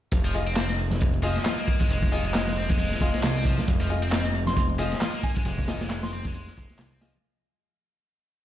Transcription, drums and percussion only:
0.12 kick loud
0.12 closed hi-hat medium
0.25 closed hi-hat soft
0.34 closed hi-hat medium
0.47 closed hi-hat medium
0.56 snare loud
0.56 clap loud
0.56 closed hi-hat medium
0.69 snare soft
0.69 closed hi-hat soft
0.79 closed hi-hat medium
0.90 snare soft
0.90 closed hi-hat medium
0.90 high conga medium
0.90 low conga loud
1.01 kick loud
1.01 closed hi-hat medium
1.14 closed hi-hat soft
1.24 closed hi-hat medium
1.36 snare soft
1.36 closed hi-hat medium
1.45 snare loud
1.45 clap loud
1.45 closed hi-hat medium
1.58 closed hi-hat soft
1.67 kick medium
1.67 closed hi-hat medium
1.80 kick loud
1.80 closed hi-hat medium
1.80 low conga medium
1.90 closed hi-hat medium
2.03 kick loud
2.03 closed hi-hat soft
2.13 closed hi-hat medium
2.25 closed hi-hat medium
2.34 snare loud
2.34 clap loud
2.34 closed hi-hat medium
2.47 snare medium
2.47 closed hi-hat soft
2.57 closed hi-hat medium
2.69 kick loud
2.69 closed hi-hat medium
2.69 high conga medium
2.69 low conga loud
2.79 closed hi-hat medium
2.79 open hi-hat medium
2.92 snare soft
2.92 closed hi-hat soft
3.01 kick medium
3.01 closed hi-hat medium
3.14 snare soft
3.14 closed hi-hat medium
3.23 snare loud
3.23 clap loud
3.23 closed hi-hat medium
3.36 closed hi-hat soft
3.45 kick loud
3.45 closed hi-hat medium
3.58 snare soft
3.58 closed hi-hat medium
3.58 low conga medium
3.68 kick loud
3.68 closed hi-hat medium
3.81 closed hi-hat soft
3.90 closed hi-hat medium
4.03 closed hi-hat medium
4.12 snare loud
4.12 clap loud
4.12 closed hi-hat medium
4.25 snare soft
4.25 closed hi-hat soft
4.35 closed hi-hat medium
4.47 snare soft
4.47 closed hi-hat medium
4.47 high conga medium
4.47 low conga loud
4.57 kick loud
4.57 closed hi-hat medium
4.69 closed hi-hat soft
4.79 closed hi-hat medium
4.92 snare soft
4.92 closed hi-hat medium
5.01 snare loud
5.01 clap loud
5.01 closed hi-hat medium
5.14 closed hi-hat soft
5.23 kick medium
5.23 closed hi-hat medium
5.36 kick medium
5.36 closed hi-hat medium
5.36 low conga medium
5.45 closed hi-hat medium
5.58 kick medium
5.58 closed hi-hat soft
5.68 snare loud
5.68 closed hi-hat medium
5.81 snare loud
5.81 closed hi-hat medium
5.90 snare loud
5.90 clap loud
5.90 closed hi-hat medium
6.03 snare loud
6.03 closed hi-hat soft
6.03 closed hi-hat medium
6.13 closed hi-hat medium
6.25 kick loud
6.25 closed hi-hat medium
6.25 high conga medium
6.25 low conga medium
6.34 closed hi-hat medium
6.34 open hi-hat medium
6.47 snare soft
6.47 closed hi-hat soft
6.57 kick loud
6.57 closed hi-hat medium
6.69 snare soft
6.69 closed hi-hat medium
6.79 snare loud
6.79 clap loud
6.79 closed hi-hat medium
6.92 closed hi-hat soft
7.01 snare loud
7.01 closed hi-hat medium
7.14 closed hi-hat medium
7.14 low conga medium

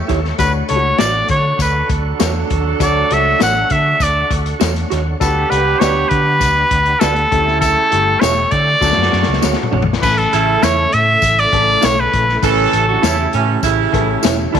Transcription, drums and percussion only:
0.09 kick medium
0.09 snare soft
0.09 closed hi-hat medium
0.25 snare soft
0.39 kick medium
0.39 closed hi-hat medium
0.39 tambourine medium
0.69 closed hi-hat medium
0.98 snare loud
0.98 closed hi-hat medium
0.98 tambourine medium
1.28 kick medium
1.28 closed hi-hat medium
1.59 kick medium
1.59 closed hi-hat medium
1.59 tambourine medium
1.89 kick medium
1.89 closed hi-hat medium
2.20 snare loud
2.20 closed hi-hat medium
2.20 tambourine medium
2.50 kick medium
2.50 closed hi-hat medium
2.80 kick loud
2.80 closed hi-hat medium
2.80 tambourine medium
3.11 closed hi-hat medium
3.40 snare loud
3.40 closed hi-hat medium
3.40 tambourine medium
3.70 kick medium
3.70 closed hi-hat medium
4.00 kick medium
4.00 closed hi-hat medium
4.00 tambourine medium
4.31 kick medium
4.31 closed hi-hat medium
4.46 closed hi-hat soft
4.61 snare loud
4.61 closed hi-hat medium
4.61 tambourine medium
4.76 closed hi-hat soft
4.91 snare soft
4.91 closed hi-hat medium
5.21 kick medium
5.21 closed hi-hat medium
5.21 tambourine medium
5.52 closed hi-hat medium
5.81 snare loud
5.81 closed hi-hat medium
5.81 tambourine loud
6.11 kick loud
6.11 closed hi-hat medium
6.41 kick medium
6.41 closed hi-hat medium
6.41 tambourine medium
6.71 kick medium
6.71 closed hi-hat medium
6.85 closed hi-hat soft
7.01 snare loud
7.01 closed hi-hat medium
7.01 tambourine medium
7.16 closed hi-hat soft
7.32 kick medium
7.32 closed hi-hat medium
7.48 snare soft
7.62 kick loud
7.62 closed hi-hat medium
7.62 tambourine medium
7.92 closed hi-hat medium
8.21 snare loud
8.21 closed hi-hat medium
8.21 tambourine loud
8.51 kick medium
8.51 closed hi-hat medium
8.81 kick medium
8.81 snare soft
8.81 tambourine medium
8.92 snare soft
9.02 snare medium
9.13 snare medium
9.23 snare medium
9.33 snare medium
9.42 snare medium
9.42 tambourine medium
9.53 snare medium
9.63 mid tom medium
9.73 floor tom medium
9.82 floor tom loud
9.93 snare medium
10.03 kick loud
10.03 crash medium
10.03 tambourine medium
10.18 closed hi-hat soft
10.33 closed hi-hat medium
10.63 snare loud
10.63 closed hi-hat medium
10.63 tambourine loud
10.92 closed hi-hat medium
11.22 kick medium
11.22 closed hi-hat medium
11.22 tambourine medium
11.38 closed hi-hat soft
11.53 kick medium
11.53 closed hi-hat medium
11.82 snare loud
11.82 closed hi-hat medium
11.82 tambourine medium
12.13 kick medium
12.13 closed hi-hat medium
12.29 snare soft
12.43 kick loud
12.43 closed hi-hat medium
12.43 tambourine medium
12.73 closed hi-hat medium
13.03 snare loud
13.03 closed hi-hat medium
13.03 tambourine loud
13.33 closed hi-hat medium
13.63 kick medium
13.63 closed hi-hat medium
13.63 tambourine medium
13.94 kick medium
13.94 closed hi-hat medium
14.23 snare loud
14.23 closed hi-hat medium
14.23 tambourine medium
14.55 kick medium
14.55 snare soft
14.55 closed hi-hat medium

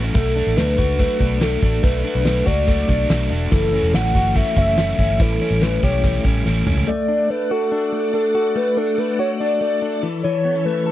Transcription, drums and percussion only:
0.15 kick loud
0.15 closed hi-hat medium
0.36 closed hi-hat medium
0.57 snare medium
0.57 closed hi-hat medium
0.78 kick medium
0.78 closed hi-hat medium
0.99 kick medium
0.99 closed hi-hat medium
1.20 kick medium
1.20 closed hi-hat medium
1.41 snare loud
1.41 closed hi-hat medium
1.62 kick medium
1.62 closed hi-hat medium
1.84 kick loud
1.84 closed hi-hat medium
2.04 closed hi-hat medium
2.25 snare medium
2.25 closed hi-hat medium
2.47 kick medium
2.47 closed hi-hat medium
2.68 kick medium
2.68 closed hi-hat medium
2.89 kick medium
2.89 snare soft
2.89 closed hi-hat medium
3.10 snare loud
3.10 closed hi-hat medium
3.32 closed hi-hat medium
3.52 kick loud
3.52 closed hi-hat medium
3.73 closed hi-hat medium
3.94 snare medium
3.94 closed hi-hat medium
4.15 kick medium
4.15 closed hi-hat medium
4.36 kick medium
4.36 closed hi-hat medium
4.56 kick medium
4.56 closed hi-hat medium
4.78 snare loud
4.78 closed hi-hat medium
4.99 kick medium
4.99 closed hi-hat medium
5.20 kick loud
5.20 closed hi-hat medium
5.40 closed hi-hat medium
5.62 snare medium
5.62 closed hi-hat medium
5.83 kick medium
5.83 closed hi-hat medium
6.04 kick medium
6.04 closed hi-hat medium
6.24 kick medium
6.24 closed hi-hat medium
6.46 snare medium
6.67 mid tom medium
6.77 floor tom medium

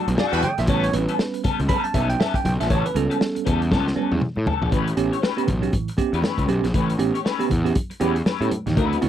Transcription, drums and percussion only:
0.08 closed hi-hat soft
0.18 snare loud
0.18 muted conga soft
0.18 high conga medium
0.33 closed hi-hat medium
0.42 closed hi-hat medium
0.42 high conga medium
0.42 low conga medium
0.58 snare soft
0.58 closed hi-hat soft
0.67 kick loud
0.67 closed hi-hat medium
0.67 muted conga soft
0.67 low conga medium
0.84 closed hi-hat medium
0.84 muted conga soft
0.93 closed hi-hat medium
1.09 closed hi-hat soft
1.19 snare loud
1.19 muted conga soft
1.34 closed hi-hat medium
1.44 kick medium
1.44 closed hi-hat medium
1.44 low conga medium
1.60 closed hi-hat soft
1.69 kick loud
1.69 closed hi-hat medium
1.69 high conga medium
1.85 closed hi-hat soft
1.94 kick medium
1.94 closed hi-hat medium
1.94 high conga medium
2.10 closed hi-hat soft
2.20 snare loud
2.20 high conga medium
2.34 kick loud
2.34 closed hi-hat medium
2.34 muted conga soft
2.45 closed hi-hat medium
2.45 high conga medium
2.45 low conga medium
2.61 snare soft
2.61 closed hi-hat soft
2.70 kick loud
2.70 closed hi-hat medium
2.70 low conga medium
2.86 closed hi-hat medium
2.86 muted conga soft
2.96 closed hi-hat medium
3.11 closed hi-hat soft
3.21 snare loud
3.21 muted conga soft
3.36 closed hi-hat medium
3.36 muted conga soft
3.47 kick loud
3.47 closed hi-hat medium
3.47 low conga medium
3.62 closed hi-hat soft
3.72 kick loud
3.72 snare medium
3.72 muted conga soft
3.72 high conga medium
3.87 snare medium
3.87 muted conga soft
3.96 high conga medium
4.12 high tom medium
4.20 mid tom medium
4.20 high conga medium
4.36 muted conga soft
4.46 floor tom loud
4.46 high conga medium
4.46 low conga medium
4.62 floor tom medium
4.72 kick loud
4.72 closed hi-hat medium
4.72 low conga medium
4.88 closed hi-hat medium
4.97 closed hi-hat medium
5.13 closed hi-hat soft
5.23 snare medium
5.23 muted conga soft
5.38 closed hi-hat soft
5.48 kick loud
5.48 closed hi-hat medium
5.48 low conga medium
5.63 closed hi-hat soft
5.72 kick loud
5.72 closed hi-hat medium
5.72 high conga medium
5.88 closed hi-hat soft
5.97 kick medium
5.97 closed hi-hat medium
5.97 high conga medium
6.14 closed hi-hat soft
6.22 snare loud
6.22 muted conga soft
6.22 high conga medium
6.38 kick medium
6.38 closed hi-hat medium
6.38 muted conga soft
6.48 closed hi-hat medium
6.48 high conga medium
6.64 snare soft
6.64 closed hi-hat soft
6.74 kick loud
6.74 closed hi-hat medium
6.74 muted conga soft
6.74 low conga medium
6.89 closed hi-hat medium
6.89 muted conga soft
6.99 closed hi-hat medium
7.15 closed hi-hat soft
7.26 snare medium
7.26 muted conga soft
7.40 closed hi-hat medium
7.40 muted conga soft
7.50 kick loud
7.50 closed hi-hat medium
7.50 low conga medium
7.66 closed hi-hat soft
7.75 kick loud
7.75 closed hi-hat medium
7.75 high conga medium
7.90 closed hi-hat soft
7.90 muted conga soft
8.01 closed hi-hat medium
8.01 high conga medium
8.16 closed hi-hat soft
8.26 snare loud
8.26 muted conga soft
8.26 high conga medium
8.42 closed hi-hat medium
8.51 closed hi-hat medium
8.51 high conga medium
8.67 snare soft
8.67 closed hi-hat soft
8.77 kick loud
8.77 closed hi-hat medium
8.77 muted conga soft
8.77 low conga medium
8.93 closed hi-hat medium
8.93 muted conga soft
9.02 closed hi-hat medium

